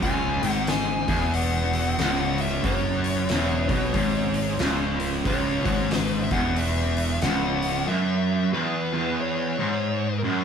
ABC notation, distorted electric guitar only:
X:1
M:4/4
L:1/8
Q:"Swing" 1/4=92
K:C#m
V:1 name="Distorted electric guitar" clef=bass
C,, G,,2 E,,3 C,,2 | F,,2 E,, B,, G,,2 C,,2 | C,, G,,2 E,,3 C,,2 | F,,2 E,, E,,2 G,,2 F,, |]